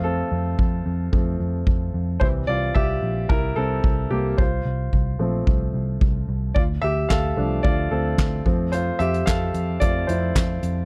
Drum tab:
HH |----------------|----------------|----------------|----------------|
CP |----------------|----------------|----------------|----x-------x---|
SD |----------------|----------------|----------------|----o-------o---|
BD |----o---o---o---|o---o---o---o---|o---o---o---o---|o---o---o---o-o-|

HH |x-xxx-x-x-x-x-x-|
CP |----x-------x---|
SD |----o-------o---|
BD |----o---o---o---|